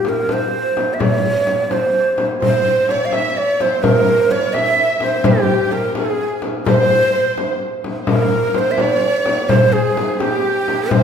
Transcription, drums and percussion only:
0.05 frame drum medium
0.29 frame drum medium
0.77 frame drum medium
1.00 frame drum medium
1.47 frame drum medium
1.71 frame drum medium
2.18 frame drum medium
2.42 frame drum medium
2.89 frame drum medium
3.12 frame drum medium
3.60 frame drum medium
3.84 frame drum medium
4.31 frame drum medium
4.55 frame drum medium
5.00 frame drum medium
5.24 frame drum loud
5.71 frame drum medium
5.95 frame drum medium
6.42 frame drum medium
6.66 frame drum loud
7.38 frame drum medium
7.84 frame drum medium
8.07 frame drum medium
8.54 frame drum medium
8.78 frame drum medium
9.26 frame drum medium
9.49 frame drum medium
9.97 frame drum medium
10.20 frame drum medium
10.68 frame drum medium
10.91 frame drum loud

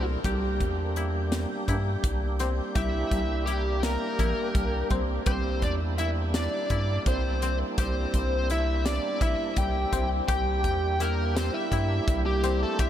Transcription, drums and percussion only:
0.24 kick medium
0.24 closed hi-hat medium
0.60 kick medium
0.60 closed hi-hat soft
0.96 closed hi-hat soft
1.32 snare medium
1.32 closed hi-hat medium
1.68 kick medium
1.68 closed hi-hat medium
2.04 kick medium
2.04 closed hi-hat medium
2.39 snare soft
2.39 closed hi-hat medium
2.75 kick medium
2.75 closed hi-hat medium
3.11 kick medium
3.11 closed hi-hat medium
3.47 closed hi-hat medium
3.83 snare medium
3.83 closed hi-hat medium
4.19 kick medium
4.19 closed hi-hat medium
4.55 kick medium
4.55 closed hi-hat medium
4.90 kick medium
4.90 closed hi-hat soft
5.26 kick loud
5.26 closed hi-hat medium
5.62 kick medium
5.62 closed hi-hat soft
5.98 closed hi-hat medium
6.34 snare medium
6.34 closed hi-hat medium
6.70 kick medium
6.70 closed hi-hat soft
7.06 kick loud
7.06 closed hi-hat medium
7.42 closed hi-hat medium
7.78 kick loud
7.78 closed hi-hat medium
8.14 kick medium
8.14 closed hi-hat medium
8.50 closed hi-hat medium
8.86 snare loud
8.86 closed hi-hat medium
9.21 kick medium
9.21 closed hi-hat medium
9.56 kick medium
9.56 closed hi-hat medium
9.93 kick medium
9.93 closed hi-hat medium
10.28 kick loud
10.28 closed hi-hat medium
10.64 kick medium
10.64 closed hi-hat soft
11.00 snare soft
11.00 closed hi-hat medium
11.37 snare loud
11.37 closed hi-hat medium
11.72 kick medium
11.72 closed hi-hat medium
12.08 kick loud
12.08 closed hi-hat medium
12.44 snare soft
12.44 closed hi-hat medium
12.79 kick loud
12.79 closed hi-hat medium

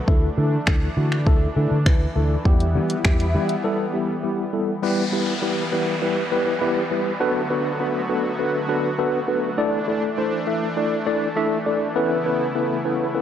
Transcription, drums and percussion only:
0.08 kick loud
0.67 finger snap loud
0.67 kick loud
1.12 finger snap medium
1.26 kick loud
1.86 finger snap loud
1.86 kick loud
2.45 kick loud
2.60 closed hi-hat medium
2.90 closed hi-hat medium
3.04 finger snap loud
3.04 kick loud
3.20 closed hi-hat medium
3.49 closed hi-hat medium

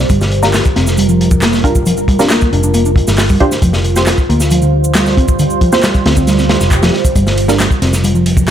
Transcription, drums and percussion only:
0.10 kick loud
0.10 closed hi-hat medium
0.10 shaker medium
0.21 snare medium
0.21 shaker soft
0.32 closed hi-hat medium
0.43 snare medium
0.43 shaker medium
0.54 snare loud
0.54 clap loud
0.54 closed hi-hat medium
0.54 shaker medium
0.65 kick loud
0.65 shaker soft
0.76 snare soft
0.76 closed hi-hat medium
0.87 snare soft
0.87 shaker medium
0.97 closed hi-hat loud
0.97 shaker medium
1.09 shaker soft
1.21 closed hi-hat medium
1.31 kick loud
1.31 shaker medium
1.42 snare loud
1.42 clap loud
1.42 closed hi-hat medium
1.42 shaker medium
1.53 snare soft
1.53 shaker soft
1.64 kick medium
1.64 closed hi-hat medium
1.75 kick medium
1.75 shaker medium
1.86 closed hi-hat medium
1.86 shaker soft
1.97 shaker soft
2.08 kick medium
2.08 closed hi-hat medium
2.19 snare medium
2.19 shaker medium
2.30 snare loud
2.30 clap loud
2.30 closed hi-hat medium
2.30 shaker medium
2.41 kick loud
2.41 shaker soft
2.53 closed hi-hat medium
2.63 shaker medium
2.74 closed hi-hat medium
2.74 shaker medium
2.85 shaker soft
2.96 kick loud
2.96 closed hi-hat medium
3.07 snare medium
3.07 shaker medium
3.18 snare loud
3.18 clap loud
3.18 open hi-hat medium
3.18 shaker medium
3.29 kick medium
3.29 shaker soft
3.40 kick medium
3.40 closed hi-hat medium
3.51 snare soft
3.51 shaker medium
3.62 kick loud
3.62 closed hi-hat loud
3.62 shaker medium
3.73 snare soft
3.73 shaker soft
3.84 closed hi-hat medium
3.96 snare medium
3.96 shaker medium
4.06 snare loud
4.06 clap loud
4.06 closed hi-hat medium
4.06 shaker medium
4.18 kick medium
4.18 shaker soft
4.30 closed hi-hat medium
4.40 snare soft
4.40 shaker medium
4.51 closed hi-hat medium
4.51 shaker medium
4.62 shaker soft
4.84 shaker medium
4.95 snare loud
4.95 clap loud
4.95 closed hi-hat medium
4.95 shaker medium
5.06 snare medium
5.06 shaker soft
5.17 kick loud
5.17 closed hi-hat medium
5.28 kick medium
5.28 shaker medium
5.39 closed hi-hat medium
5.39 shaker medium
5.50 shaker soft
5.61 kick medium
5.61 closed hi-hat medium
5.72 snare medium
5.72 shaker medium
5.83 snare loud
5.83 clap loud
5.83 closed hi-hat medium
5.83 shaker medium
5.95 kick medium
5.95 shaker soft
6.06 snare loud
6.06 closed hi-hat medium
6.17 kick medium
6.17 shaker medium
6.27 snare soft
6.27 closed hi-hat medium
6.27 shaker medium
6.38 snare soft
6.38 shaker soft
6.49 snare loud
6.49 closed hi-hat medium
6.61 snare soft
6.61 shaker medium
6.71 kick medium
6.71 clap loud
6.71 closed hi-hat medium
6.71 shaker medium
6.83 snare loud
6.83 closed hi-hat medium
6.83 shaker soft
6.93 snare soft
7.05 kick medium
7.05 closed hi-hat medium
7.05 shaker medium
7.16 kick loud
7.16 closed hi-hat medium
7.16 shaker medium
7.27 snare medium
7.27 shaker soft
7.38 closed hi-hat medium
7.38 ride medium
7.48 snare medium
7.48 shaker medium
7.60 snare loud
7.60 clap loud
7.60 closed hi-hat medium
7.60 shaker medium
7.71 kick loud
7.71 shaker soft
7.82 snare soft
7.82 closed hi-hat medium
7.82 ride medium
7.93 snare soft
7.93 shaker medium
8.04 closed hi-hat medium
8.04 shaker medium
8.15 shaker soft
8.26 closed hi-hat medium
8.26 ride medium
8.37 kick loud
8.37 shaker medium

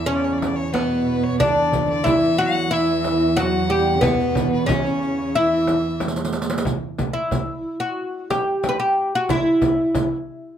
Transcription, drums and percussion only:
0.42 riq soft
0.42 darbuka tek medium
0.42 frame drum medium
0.75 riq soft
0.75 darbuka tek medium
0.75 frame drum medium
1.40 riq medium
1.40 darbuka dum medium
1.40 frame drum medium
1.72 riq medium
1.72 darbuka dum medium
1.72 frame drum medium
2.06 riq medium
2.06 darbuka dum medium
2.06 frame drum medium
2.24 riq soft
2.40 riq soft
3.04 riq soft
3.04 darbuka tek medium
3.04 frame drum medium
3.37 riq medium
3.37 darbuka tek medium
3.37 frame drum medium
4.02 riq medium
4.02 frame drum medium
4.02 darbuka dum medium
4.19 riq soft
4.19 darbuka ka soft
4.35 riq medium
4.35 frame drum medium
4.35 darbuka dum medium
4.68 riq medium
4.68 darbuka dum loud
4.68 frame drum medium
4.86 riq soft
5.03 riq soft
5.67 riq soft
5.67 darbuka tek medium
5.67 frame drum medium
6.00 riq medium
6.00 darbuka tek medium
6.00 frame drum medium
6.08 riq medium
6.08 darbuka ka medium
6.16 riq medium
6.16 darbuka tek medium
6.25 riq medium
6.25 darbuka ka medium
6.33 riq medium
6.33 darbuka tek medium
6.42 riq medium
6.42 darbuka ka medium
6.50 riq medium
6.50 darbuka tek medium
6.58 riq medium
6.58 darbuka ka medium
6.65 riq medium
6.65 frame drum medium
6.65 darbuka dum medium
6.83 darbuka ka soft
6.98 riq medium
6.98 darbuka dum medium
6.98 frame drum medium
7.31 riq medium
7.31 frame drum medium
7.31 darbuka dum medium
8.31 riq soft
8.31 darbuka tek medium
8.31 frame drum medium
8.63 riq soft
8.63 darbuka tek medium
8.63 frame drum medium
9.29 riq medium
9.29 frame drum medium
9.29 darbuka dum medium
9.46 darbuka ka soft
9.62 riq soft
9.62 frame drum medium
9.62 darbuka dum medium
9.95 riq medium
9.95 frame drum medium
9.95 darbuka dum medium

